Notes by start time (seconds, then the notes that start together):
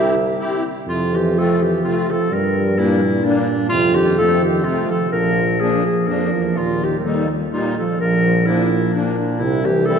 Already playing: C2 C3 C4 E4 G4 E5
0.39 C4 E4 G4
0.87 F2 C3 F4
1.13 E3 G4
1.35 F3 A3 C4 F4 A4
1.61 E3 G4
1.83 C3 A3 C4 F4
2.10 F3 A4
2.31 G2 G3 A#4
2.77 A#2 G3 A#3 D4 E4
3.22 A#2 G3 A#3 D4
3.69 F2 C3 F4
3.95 D#3 G4
4.16 F3 A4
4.20 A3 C4
4.41 D#3 G4
4.63 C3 F4
4.67 F3 A3 C4
4.87 F3 A4
5.11 A#1 F3 A#4
5.60 F3 A#3 D4 G#4
5.85 F3 G#4
6.07 F2 F3 A#3 D4 A#4
6.34 E2
6.56 D#2 A#2 F4
6.83 D#3 G4
6.99 G3 A#4
7.04 D#3 G3 A#3 D#4 A4
7.52 A#2 G3 A#3 D#4 F4
7.79 F3 A4
8.01 A#1 F3 A#4
8.46 A#2 F3 A#3 D4 E4
8.93 A#2 F3 A#3 D4
9.39 C2 E4
9.43 C3
9.65 E3 G4
9.86 E3 G3 C4 E4 A4